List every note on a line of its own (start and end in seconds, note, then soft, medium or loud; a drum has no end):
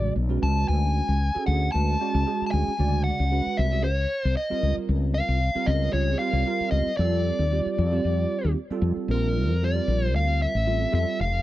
0.00 0.13 A1 medium
0.00 0.15 C#3 medium
0.00 0.15 G#3 medium
0.00 0.16 F#4 medium
0.00 0.16 G#4 medium
0.00 0.13 D5 medium
0.16 0.40 B1 medium
0.29 1.16 G#3 medium
0.29 1.16 C#4 medium
0.29 1.17 F#4 medium
0.29 1.17 B4 medium
0.42 0.66 C#2 medium
0.42 0.67 A5 medium
0.68 1.00 D2 medium
0.68 1.43 G#5 medium
1.08 1.29 C#2 medium
1.35 1.68 C#4 medium
1.35 1.68 F#4 medium
1.35 1.67 G#4 medium
1.35 1.68 A4 medium
1.35 muted fretless electric bass stroke soft
1.46 1.68 D2 medium
1.46 1.72 F#5 medium
1.72 1.95 D2 medium
1.72 1.96 G#3 medium
1.72 1.96 C#4 medium
1.72 1.96 F#4 medium
1.72 1.96 B4 medium
1.72 2.45 A5 medium
2.00 2.22 G#3 medium
2.00 2.23 C#4 medium
2.00 2.23 F#4 medium
2.00 2.23 D5 medium
2.14 2.24 C#2 medium
2.26 2.70 G#3 medium
2.26 2.70 C#4 medium
2.26 2.71 F#4 medium
2.26 2.71 G#4 medium
2.41 muted fretless electric bass stroke soft
2.46 2.51 A5 medium
2.51 2.64 D2 medium
2.51 3.03 G#5 loud
2.68 muted fretless electric bass stroke soft
2.78 3.10 D2 medium
2.78 3.23 C#3 medium
2.78 3.23 G#3 medium
2.78 3.23 F#4 medium
2.78 3.24 D5 medium
3.04 3.59 F#5 loud
3.20 3.40 C#2 medium
3.31 3.64 G#3 medium
3.31 3.65 C#4 medium
3.31 3.65 F#4 medium
3.31 3.65 B4 medium
3.57 3.85 C2 loud
3.57 3.84 E5 medium
3.71 3.84 G#3 medium
3.71 3.84 C#4 medium
3.71 3.84 F#4 medium
3.71 3.85 G#4 medium
3.84 4.05 C#2 medium
3.84 4.24 C#5 medium
4.24 4.34 C2 medium
4.24 4.36 C5 medium
4.37 4.74 D#5 medium
4.50 5.37 G3 medium
4.50 5.37 C4 medium
4.50 5.37 F4 medium
4.50 5.38 A#4 medium
4.50 muted fretless electric bass stroke soft
4.63 4.73 C#2 medium
4.89 5.20 C#2 medium
5.14 5.69 F5 loud
5.28 5.49 C2 medium
5.55 5.87 G3 medium
5.55 5.88 C4 medium
5.55 5.88 F4 medium
5.55 5.88 A#4 medium
5.66 5.88 C#2 loud
5.66 5.92 D#5 medium
5.93 6.14 C#2 medium
5.93 6.15 G3 medium
5.93 6.16 C4 medium
5.93 6.16 F4 medium
5.93 6.16 G#4 medium
5.93 6.18 C#5 medium
6.19 6.42 G3 medium
6.19 6.42 C4 medium
6.19 6.42 F4 medium
6.19 6.43 A#4 medium
6.19 6.70 F5 medium
6.33 6.43 C2 medium
6.45 6.90 G3 medium
6.45 6.90 C4 medium
6.45 6.91 F4 medium
6.45 6.91 A#4 medium
6.60 muted fretless electric bass stroke soft
6.71 6.83 C#2 medium
6.71 6.96 D#5 medium
6.97 7.30 F2 medium
6.97 7.43 G3 medium
6.97 7.43 C4 medium
6.97 7.44 F4 medium
6.97 7.44 A4 medium
6.97 8.52 D5 medium
7.39 7.59 D#2 medium
7.51 7.84 G3 medium
7.51 7.85 C4 medium
7.51 7.85 F4 medium
7.51 7.85 G4 medium
7.66 muted fretless electric bass stroke soft
7.78 7.99 F2 loud
7.91 8.56 G3 medium
7.91 8.57 C4 medium
7.91 8.56 F4 medium
7.91 8.57 G4 medium
8.05 8.25 F2 medium
8.44 8.54 D#2 medium
8.70 9.08 G3 medium
8.70 9.08 C4 medium
8.70 9.09 F4 medium
8.70 9.10 A4 medium
8.70 muted fretless electric bass stroke soft
8.82 8.93 F2 medium
8.96 muted fretless electric bass stroke soft
9.08 9.49 A#1 medium
9.08 9.53 G3 medium
9.08 9.54 C4 medium
9.08 9.54 F4 medium
9.08 9.54 A#4 medium
9.08 9.64 A#4 medium
9.49 9.79 F2 medium
9.62 9.74 G3 medium
9.62 9.74 C4 medium
9.62 9.74 F4 soft
9.62 9.74 A4 medium
9.62 10.15 D5 medium
9.75 10.52 G3 medium
9.75 10.52 C4 medium
9.75 10.52 F4 medium
9.75 10.52 A#4 medium
9.88 10.15 A#1 medium
10.15 10.46 D2 medium
10.15 10.42 F5 medium
10.42 10.94 E5 medium
10.55 10.85 A1 medium
10.66 10.89 G3 medium
10.66 10.89 C4 medium
10.66 10.89 F4 medium
10.66 10.89 A4 medium
10.91 11.04 F2 medium
10.91 11.19 G3 medium
10.91 11.19 C4 medium
10.91 11.19 F4 medium
10.91 11.19 A4 medium
10.91 11.21 E5 medium
11.20 11.42 F1 medium
11.20 11.42 F5 medium